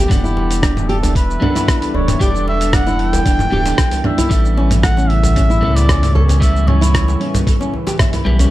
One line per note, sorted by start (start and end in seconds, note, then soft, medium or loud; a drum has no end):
0.00 8.51 E3 medium
0.00 0.90 G4 medium
0.08 1.37 E1 loud
0.08 1.38 G3 medium
0.08 1.38 B3 medium
0.08 1.39 D4 medium
0.08 0.23 D4 medium
0.08 1.39 F#5 medium
0.08 kick loud
0.08 mid tom medium
0.08 open hi-hat medium
0.08 shaker medium
0.12 1.40 A4 loud
0.23 0.61 E4 loud
0.23 4.31 E5 medium
0.23 djembe tone soft
0.23 shaker soft
0.37 djembe slap medium
0.51 open hi-hat soft
0.51 shaker medium
0.58 4.31 D4 medium
0.63 0.76 D4 medium
0.63 kick loud
0.63 cross-stick loud
0.63 open hi-hat medium
0.63 shaker medium
0.77 mid tom medium
0.77 djembe slap medium
0.77 shaker soft
0.89 0.97 G4 loud
0.89 1.15 A4 medium
0.89 open hi-hat soft
1.03 1.15 D4 medium
1.03 open hi-hat soft
1.03 djembe tone medium
1.03 djembe bass loud
1.03 shaker medium
1.15 1.97 B4 loud
1.15 kick loud
1.15 open hi-hat medium
1.15 shaker medium
1.30 shaker soft
1.40 2.17 G3 medium
1.40 2.17 B3 medium
1.40 1.55 D4 medium
1.40 2.18 D4 medium
1.40 2.18 F#5 medium
1.40 mid tom medium
1.40 djembe bass loud
1.44 2.19 A4 medium
1.55 1.93 E4 loud
1.55 open hi-hat soft
1.55 djembe slap medium
1.55 shaker medium
1.63 5.52 A4 medium
1.68 kick loud
1.68 cross-stick loud
1.68 open hi-hat medium
1.68 shaker medium
1.82 open hi-hat medium
1.82 djembe tone medium
1.82 shaker soft
1.94 2.15 D1 loud
1.94 2.07 D4 medium
1.94 2.23 C#5 medium
1.94 djembe bass medium
2.08 mid tom medium
2.08 open hi-hat soft
2.08 djembe tone medium
2.08 shaker medium
2.19 3.22 E1 loud
2.19 3.48 G3 medium
2.19 3.49 B3 medium
2.19 3.49 D4 medium
2.19 2.28 G4 loud
2.19 2.47 D5 loud
2.19 3.50 G5 medium
2.19 kick loud
2.19 open hi-hat medium
2.19 shaker medium
2.23 3.50 A4 loud
2.35 2.46 D4 medium
2.35 djembe tone soft
2.35 shaker soft
2.48 2.76 E5 loud
2.48 djembe slap soft
2.61 open hi-hat soft
2.61 shaker medium
2.73 2.86 D4 medium
2.73 3.02 F#5 loud
2.73 kick loud
2.73 cross-stick loud
2.73 mid tom medium
2.73 open hi-hat medium
2.73 shaker medium
2.87 3.25 E4 loud
2.87 djembe slap medium
2.87 shaker soft
2.99 4.07 G5 loud
2.99 open hi-hat soft
3.13 open hi-hat soft
3.13 djembe tone medium
3.13 djembe bass loud
3.13 shaker medium
3.26 3.47 E1 medium
3.26 3.39 D4 medium
3.26 kick loud
3.26 open hi-hat medium
3.26 shaker medium
3.39 mid tom medium
3.39 djembe slap medium
3.39 shaker soft
3.50 3.73 D1 medium
3.50 4.27 G3 medium
3.50 4.28 B3 medium
3.50 4.28 D4 medium
3.50 3.60 G4 loud
3.50 4.29 A4 medium
3.50 4.29 G5 medium
3.50 djembe tone medium
3.66 3.78 D4 medium
3.66 open hi-hat soft
3.66 djembe slap medium
3.66 shaker medium
3.78 kick loud
3.78 cross-stick loud
3.78 open hi-hat medium
3.78 shaker medium
3.91 open hi-hat medium
3.91 djembe bass medium
3.91 shaker soft
4.04 4.18 D4 medium
4.04 4.57 E5 loud
4.04 mid tom medium
4.04 djembe tone medium
4.18 4.31 E4 loud
4.18 open hi-hat soft
4.18 djembe tone medium
4.18 djembe bass medium
4.18 shaker medium
4.29 5.64 A1 loud
4.29 8.51 A2 medium
4.29 5.59 G3 medium
4.29 5.59 B3 medium
4.29 5.59 C#4 medium
4.29 5.60 E4 medium
4.29 5.60 A4 loud
4.29 kick loud
4.29 open hi-hat medium
4.29 shaker medium
4.44 djembe tone soft
4.44 shaker soft
4.57 4.70 C#4 medium
4.57 djembe slap soft
4.71 mid tom medium
4.71 open hi-hat soft
4.71 shaker medium
4.82 8.51 C#3 medium
4.82 4.92 A4 loud
4.82 5.11 F#5 loud
4.82 kick loud
4.82 cross-stick loud
4.82 open hi-hat medium
4.82 shaker medium
4.97 5.09 C#4 medium
4.97 djembe slap soft
4.97 shaker soft
5.09 5.77 E5 loud
5.09 open hi-hat soft
5.23 open hi-hat soft
5.23 djembe tone medium
5.23 djembe bass medium
5.23 shaker medium
5.36 5.49 C#4 medium
5.36 kick loud
5.36 mid tom medium
5.36 open hi-hat medium
5.36 shaker medium
5.50 5.88 E4 loud
5.50 shaker soft
5.61 7.16 C#2 medium
5.61 6.39 C#3 medium
5.61 6.38 G3 medium
5.61 6.38 B3 medium
5.61 6.39 E4 medium
5.61 6.40 A4 medium
5.61 djembe bass loud
5.76 6.16 D5 loud
5.76 open hi-hat soft
5.76 djembe slap medium
5.76 shaker medium
5.89 6.02 C#4 medium
5.89 kick loud
5.89 cross-stick loud
5.89 open hi-hat medium
5.89 shaker medium
6.03 mid tom medium
6.03 open hi-hat medium
6.03 djembe tone medium
6.03 shaker soft
6.14 6.23 A4 loud
6.14 6.43 C#5 medium
6.14 djembe bass loud
6.29 6.41 C#4 medium
6.29 open hi-hat soft
6.29 djembe tone medium
6.29 shaker medium
6.40 7.69 G3 medium
6.40 7.70 B3 medium
6.40 7.70 C#4 medium
6.40 7.71 E4 medium
6.40 7.71 A4 loud
6.40 6.69 E5 loud
6.40 kick loud
6.40 open hi-hat medium
6.40 shaker medium
6.55 djembe tone soft
6.55 shaker soft
6.67 6.81 C#4 medium
6.67 7.47 C#5 medium
6.67 mid tom medium
6.67 djembe slap soft
6.81 7.19 E4 loud
6.81 open hi-hat soft
6.81 shaker medium
6.94 kick loud
6.94 cross-stick loud
6.94 open hi-hat medium
6.94 shaker medium
7.08 djembe slap medium
7.08 shaker soft
7.21 7.34 C#4 medium
7.21 open hi-hat soft
7.34 mid tom medium
7.34 open hi-hat soft
7.34 djembe tone medium
7.34 djembe bass medium
7.34 shaker medium
7.47 7.55 A4 loud
7.47 kick loud
7.47 open hi-hat medium
7.47 shaker medium
7.61 7.73 C#4 medium
7.61 djembe slap medium
7.61 shaker soft
7.74 djembe tone medium
7.87 7.99 G4 medium
7.87 open hi-hat soft
7.87 djembe slap medium
7.87 shaker medium
7.99 8.13 E5 medium
7.99 kick loud
7.99 cross-stick loud
7.99 mid tom medium
7.99 open hi-hat medium
7.99 shaker medium
8.13 8.25 E4 medium
8.13 open hi-hat medium
8.13 djembe bass medium
8.13 shaker soft
8.25 8.47 B1 medium
8.25 8.49 G3 medium
8.25 8.49 B3 medium
8.25 8.49 C#4 medium
8.25 8.49 E4 medium
8.25 8.50 G4 loud
8.25 djembe tone medium
8.39 8.51 C#4 medium
8.39 open hi-hat soft
8.39 djembe tone medium
8.39 djembe bass medium
8.39 shaker medium